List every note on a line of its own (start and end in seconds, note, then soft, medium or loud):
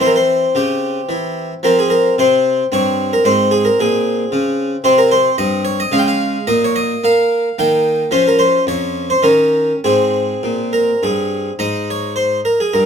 0.00 0.44 E3 medium
0.00 1.59 C4 soft
0.00 0.08 C5 loud
0.06 0.14 A#4 medium
0.16 0.56 C5 medium
0.55 0.99 C#3 medium
0.55 1.48 G4 medium
1.09 1.52 E3 medium
1.63 2.07 F3 medium
1.63 2.68 C4 soft
1.63 1.77 A#4 loud
1.79 1.92 G#4 medium
1.90 2.14 A#4 loud
2.18 2.61 C3 medium
2.18 2.65 C5 loud
2.72 3.15 G2 medium
2.72 3.21 C4 medium
2.72 3.12 C#5 loud
3.13 3.26 A#4 loud
3.24 3.67 G#2 medium
3.24 4.81 C4 medium
3.24 3.52 C5 loud
3.51 3.65 G#4 loud
3.65 3.78 A#4 medium
3.80 4.22 A#2 medium
3.80 4.70 G#4 loud
4.32 4.75 C#3 medium
4.84 5.27 C3 medium
4.84 5.89 C4 medium
4.84 4.98 C5 loud
4.98 5.12 A#4 loud
5.11 5.35 C5 loud
5.38 5.82 G2 medium
5.38 5.61 D#5 loud
5.65 5.79 C#5 loud
5.80 5.93 D#5 loud
5.92 6.36 C#3 medium
5.92 6.43 G#3 medium
5.92 6.00 F5 loud
5.98 6.06 G5 loud
6.08 6.48 F5 loud
6.47 6.92 A#2 medium
6.47 7.02 A#3 medium
6.47 6.61 D#5 loud
6.64 6.77 C#5 loud
6.76 7.03 D#5 loud
7.04 7.47 A#3 medium
7.04 7.58 F5 loud
7.58 8.02 D#3 medium
7.58 8.09 A#3 medium
7.58 8.05 G5 loud
8.11 8.56 F3 medium
8.11 9.19 C#4 medium
8.11 8.26 C5 loud
8.28 8.41 A#4 loud
8.39 8.63 C5 loud
8.67 9.12 F2 medium
8.67 9.10 C#5 loud
9.10 9.24 C5 loud
9.23 9.70 D#3 medium
9.23 9.78 C#4 soft
9.23 9.74 A#4 loud
9.84 10.32 G#2 medium
9.84 11.56 C4 soft
9.84 10.59 G#4 medium
10.43 10.90 A#2 medium
10.73 11.01 A#4 loud
11.03 11.48 G2 medium
11.03 11.52 G#4 medium
11.59 12.39 G#2 medium
11.59 12.86 D#4 soft
11.59 11.87 D#5 loud
11.90 12.12 C#5 medium
12.16 12.39 C5 loud
12.45 12.57 A#4 medium
12.60 12.72 G#4 medium
12.73 12.86 G2 medium
12.73 12.86 A#4 medium